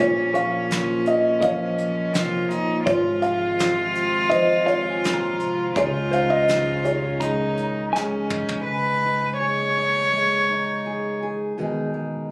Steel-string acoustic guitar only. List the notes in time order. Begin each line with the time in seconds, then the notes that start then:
Already playing: F3 C#4 F4
0.00 A#2
0.35 A#3
0.71 F4
1.42 F3
1.78 A#3
2.13 C3
2.50 A#2
2.86 G#2
3.24 G#3
3.61 F4
4.32 F3
4.69 G#3
5.04 A#2
5.40 C3
5.76 C#3 G#3 D#4 G#4
6.13 D#4
6.49 G#4
6.84 G#4
7.19 G#3
7.57 D#4
7.93 G#3
8.30 D#4
8.66 C#3
9.05 D#4
9.40 G#4
9.77 D#4
10.12 G#3
10.50 D#4
10.86 G#4
11.23 G#4
11.58 B2 D#3 G#3 D#4 G#4
11.94 G#3